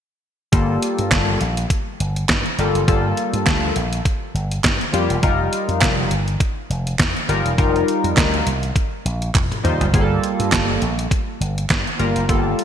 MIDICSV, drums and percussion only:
0, 0, Header, 1, 2, 480
1, 0, Start_track
1, 0, Key_signature, -2, "minor"
1, 0, Tempo, 588235
1, 430, Time_signature, 4, 2, 24, 8
1, 10315, End_track
2, 0, Start_track
2, 0, Title_t, "Drums"
2, 430, Note_on_c, 9, 36, 107
2, 430, Note_on_c, 9, 42, 90
2, 511, Note_off_c, 9, 42, 0
2, 512, Note_off_c, 9, 36, 0
2, 673, Note_on_c, 9, 42, 68
2, 755, Note_off_c, 9, 42, 0
2, 804, Note_on_c, 9, 42, 47
2, 885, Note_off_c, 9, 42, 0
2, 908, Note_on_c, 9, 38, 117
2, 908, Note_on_c, 9, 42, 92
2, 909, Note_on_c, 9, 36, 114
2, 911, Note_on_c, 9, 39, 90
2, 989, Note_off_c, 9, 38, 0
2, 990, Note_off_c, 9, 42, 0
2, 991, Note_off_c, 9, 36, 0
2, 993, Note_off_c, 9, 39, 0
2, 1148, Note_on_c, 9, 42, 68
2, 1230, Note_off_c, 9, 42, 0
2, 1284, Note_on_c, 9, 42, 54
2, 1365, Note_off_c, 9, 42, 0
2, 1388, Note_on_c, 9, 36, 93
2, 1389, Note_on_c, 9, 42, 97
2, 1470, Note_off_c, 9, 36, 0
2, 1471, Note_off_c, 9, 42, 0
2, 1635, Note_on_c, 9, 42, 64
2, 1716, Note_off_c, 9, 42, 0
2, 1766, Note_on_c, 9, 42, 48
2, 1847, Note_off_c, 9, 42, 0
2, 1868, Note_on_c, 9, 42, 96
2, 1870, Note_on_c, 9, 36, 105
2, 1870, Note_on_c, 9, 38, 113
2, 1872, Note_on_c, 9, 39, 82
2, 1949, Note_off_c, 9, 42, 0
2, 1951, Note_off_c, 9, 38, 0
2, 1952, Note_off_c, 9, 36, 0
2, 1953, Note_off_c, 9, 39, 0
2, 2005, Note_on_c, 9, 42, 31
2, 2087, Note_off_c, 9, 42, 0
2, 2111, Note_on_c, 9, 42, 67
2, 2192, Note_off_c, 9, 42, 0
2, 2246, Note_on_c, 9, 42, 46
2, 2328, Note_off_c, 9, 42, 0
2, 2350, Note_on_c, 9, 36, 109
2, 2350, Note_on_c, 9, 42, 82
2, 2432, Note_off_c, 9, 36, 0
2, 2432, Note_off_c, 9, 42, 0
2, 2590, Note_on_c, 9, 42, 78
2, 2671, Note_off_c, 9, 42, 0
2, 2722, Note_on_c, 9, 42, 50
2, 2803, Note_off_c, 9, 42, 0
2, 2826, Note_on_c, 9, 38, 127
2, 2827, Note_on_c, 9, 42, 97
2, 2829, Note_on_c, 9, 36, 105
2, 2831, Note_on_c, 9, 39, 88
2, 2908, Note_off_c, 9, 38, 0
2, 2909, Note_off_c, 9, 42, 0
2, 2910, Note_off_c, 9, 36, 0
2, 2912, Note_off_c, 9, 39, 0
2, 3067, Note_on_c, 9, 42, 62
2, 3148, Note_off_c, 9, 42, 0
2, 3204, Note_on_c, 9, 42, 54
2, 3285, Note_off_c, 9, 42, 0
2, 3308, Note_on_c, 9, 36, 98
2, 3310, Note_on_c, 9, 42, 83
2, 3390, Note_off_c, 9, 36, 0
2, 3391, Note_off_c, 9, 42, 0
2, 3554, Note_on_c, 9, 42, 63
2, 3636, Note_off_c, 9, 42, 0
2, 3684, Note_on_c, 9, 42, 52
2, 3766, Note_off_c, 9, 42, 0
2, 3786, Note_on_c, 9, 42, 105
2, 3788, Note_on_c, 9, 38, 108
2, 3789, Note_on_c, 9, 36, 115
2, 3790, Note_on_c, 9, 39, 72
2, 3868, Note_off_c, 9, 42, 0
2, 3870, Note_off_c, 9, 38, 0
2, 3871, Note_off_c, 9, 36, 0
2, 3871, Note_off_c, 9, 39, 0
2, 3926, Note_on_c, 9, 42, 30
2, 4008, Note_off_c, 9, 42, 0
2, 4029, Note_on_c, 9, 42, 62
2, 4110, Note_off_c, 9, 42, 0
2, 4163, Note_on_c, 9, 42, 52
2, 4244, Note_off_c, 9, 42, 0
2, 4267, Note_on_c, 9, 42, 84
2, 4268, Note_on_c, 9, 36, 105
2, 4349, Note_off_c, 9, 42, 0
2, 4350, Note_off_c, 9, 36, 0
2, 4510, Note_on_c, 9, 42, 65
2, 4592, Note_off_c, 9, 42, 0
2, 4641, Note_on_c, 9, 42, 48
2, 4723, Note_off_c, 9, 42, 0
2, 4745, Note_on_c, 9, 38, 120
2, 4746, Note_on_c, 9, 36, 114
2, 4746, Note_on_c, 9, 39, 83
2, 4746, Note_on_c, 9, 42, 94
2, 4827, Note_off_c, 9, 38, 0
2, 4827, Note_off_c, 9, 42, 0
2, 4828, Note_off_c, 9, 36, 0
2, 4828, Note_off_c, 9, 39, 0
2, 4986, Note_on_c, 9, 42, 68
2, 5068, Note_off_c, 9, 42, 0
2, 5122, Note_on_c, 9, 42, 48
2, 5204, Note_off_c, 9, 42, 0
2, 5225, Note_on_c, 9, 36, 109
2, 5227, Note_on_c, 9, 42, 93
2, 5307, Note_off_c, 9, 36, 0
2, 5308, Note_off_c, 9, 42, 0
2, 5472, Note_on_c, 9, 42, 67
2, 5554, Note_off_c, 9, 42, 0
2, 5605, Note_on_c, 9, 42, 49
2, 5687, Note_off_c, 9, 42, 0
2, 5708, Note_on_c, 9, 36, 118
2, 5708, Note_on_c, 9, 39, 81
2, 5708, Note_on_c, 9, 42, 102
2, 5710, Note_on_c, 9, 38, 111
2, 5789, Note_off_c, 9, 36, 0
2, 5789, Note_off_c, 9, 39, 0
2, 5789, Note_off_c, 9, 42, 0
2, 5791, Note_off_c, 9, 38, 0
2, 5847, Note_on_c, 9, 42, 30
2, 5929, Note_off_c, 9, 42, 0
2, 5950, Note_on_c, 9, 42, 56
2, 6031, Note_off_c, 9, 42, 0
2, 6085, Note_on_c, 9, 42, 48
2, 6166, Note_off_c, 9, 42, 0
2, 6188, Note_on_c, 9, 36, 117
2, 6189, Note_on_c, 9, 42, 83
2, 6270, Note_off_c, 9, 36, 0
2, 6270, Note_off_c, 9, 42, 0
2, 6331, Note_on_c, 9, 42, 31
2, 6412, Note_off_c, 9, 42, 0
2, 6433, Note_on_c, 9, 42, 77
2, 6515, Note_off_c, 9, 42, 0
2, 6564, Note_on_c, 9, 42, 49
2, 6645, Note_off_c, 9, 42, 0
2, 6667, Note_on_c, 9, 39, 82
2, 6668, Note_on_c, 9, 36, 109
2, 6671, Note_on_c, 9, 38, 122
2, 6671, Note_on_c, 9, 42, 100
2, 6749, Note_off_c, 9, 39, 0
2, 6750, Note_off_c, 9, 36, 0
2, 6753, Note_off_c, 9, 38, 0
2, 6753, Note_off_c, 9, 42, 0
2, 6804, Note_on_c, 9, 42, 31
2, 6886, Note_off_c, 9, 42, 0
2, 6909, Note_on_c, 9, 42, 71
2, 6990, Note_off_c, 9, 42, 0
2, 7042, Note_on_c, 9, 42, 49
2, 7124, Note_off_c, 9, 42, 0
2, 7145, Note_on_c, 9, 36, 105
2, 7148, Note_on_c, 9, 42, 88
2, 7227, Note_off_c, 9, 36, 0
2, 7229, Note_off_c, 9, 42, 0
2, 7392, Note_on_c, 9, 42, 67
2, 7474, Note_off_c, 9, 42, 0
2, 7523, Note_on_c, 9, 42, 49
2, 7605, Note_off_c, 9, 42, 0
2, 7629, Note_on_c, 9, 36, 119
2, 7629, Note_on_c, 9, 39, 81
2, 7629, Note_on_c, 9, 42, 97
2, 7630, Note_on_c, 9, 48, 55
2, 7710, Note_off_c, 9, 36, 0
2, 7710, Note_off_c, 9, 42, 0
2, 7711, Note_off_c, 9, 39, 0
2, 7712, Note_off_c, 9, 48, 0
2, 7765, Note_on_c, 9, 47, 47
2, 7769, Note_on_c, 9, 42, 33
2, 7847, Note_off_c, 9, 47, 0
2, 7850, Note_off_c, 9, 42, 0
2, 7872, Note_on_c, 9, 45, 74
2, 7873, Note_on_c, 9, 42, 65
2, 7954, Note_off_c, 9, 45, 0
2, 7955, Note_off_c, 9, 42, 0
2, 8006, Note_on_c, 9, 42, 50
2, 8006, Note_on_c, 9, 43, 85
2, 8088, Note_off_c, 9, 42, 0
2, 8088, Note_off_c, 9, 43, 0
2, 8109, Note_on_c, 9, 36, 104
2, 8109, Note_on_c, 9, 42, 82
2, 8191, Note_off_c, 9, 36, 0
2, 8191, Note_off_c, 9, 42, 0
2, 8352, Note_on_c, 9, 42, 78
2, 8434, Note_off_c, 9, 42, 0
2, 8485, Note_on_c, 9, 42, 49
2, 8566, Note_off_c, 9, 42, 0
2, 8587, Note_on_c, 9, 39, 86
2, 8588, Note_on_c, 9, 36, 102
2, 8588, Note_on_c, 9, 38, 127
2, 8589, Note_on_c, 9, 42, 98
2, 8669, Note_off_c, 9, 39, 0
2, 8670, Note_off_c, 9, 36, 0
2, 8670, Note_off_c, 9, 38, 0
2, 8670, Note_off_c, 9, 42, 0
2, 8828, Note_on_c, 9, 42, 66
2, 8909, Note_off_c, 9, 42, 0
2, 8966, Note_on_c, 9, 42, 53
2, 9048, Note_off_c, 9, 42, 0
2, 9068, Note_on_c, 9, 36, 108
2, 9071, Note_on_c, 9, 42, 100
2, 9149, Note_off_c, 9, 36, 0
2, 9153, Note_off_c, 9, 42, 0
2, 9315, Note_on_c, 9, 42, 65
2, 9396, Note_off_c, 9, 42, 0
2, 9448, Note_on_c, 9, 42, 54
2, 9530, Note_off_c, 9, 42, 0
2, 9548, Note_on_c, 9, 39, 70
2, 9549, Note_on_c, 9, 36, 117
2, 9549, Note_on_c, 9, 42, 89
2, 9551, Note_on_c, 9, 38, 111
2, 9629, Note_off_c, 9, 39, 0
2, 9630, Note_off_c, 9, 42, 0
2, 9631, Note_off_c, 9, 36, 0
2, 9632, Note_off_c, 9, 38, 0
2, 9688, Note_on_c, 9, 42, 29
2, 9770, Note_off_c, 9, 42, 0
2, 9788, Note_on_c, 9, 42, 59
2, 9870, Note_off_c, 9, 42, 0
2, 9922, Note_on_c, 9, 42, 48
2, 10004, Note_off_c, 9, 42, 0
2, 10029, Note_on_c, 9, 36, 102
2, 10030, Note_on_c, 9, 42, 85
2, 10111, Note_off_c, 9, 36, 0
2, 10111, Note_off_c, 9, 42, 0
2, 10272, Note_on_c, 9, 42, 73
2, 10315, Note_off_c, 9, 42, 0
2, 10315, End_track
0, 0, End_of_file